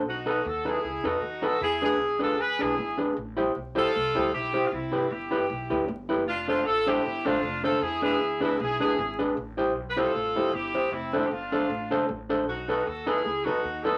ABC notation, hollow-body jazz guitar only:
X:1
M:4/4
L:1/8
Q:"Swing" 1/4=155
K:Am
V:1 name="Hollow-body jazz guitar"
z [^DAB] z [DAB] z [DAB] z [DAB] | z [D^GB] z [DGB] z [DGB] z [DGB] | z [EGc] z [EGc] z [EGc] z [EGc] | z [EGB] z [EGB] z [EGB] z [EGB] |
z [DAc] z [DAc] z [DAc] z [DAc] | z [D^GB] z [DGB] z [DGB] z [DGB] | z [EGc] z [EGc] z [EGc] z [EGc] | z [DAc] z [DAc] z [DAc] z [DAc] |
z [^DAB] z [DAB] z [DAB] z [DAB] |]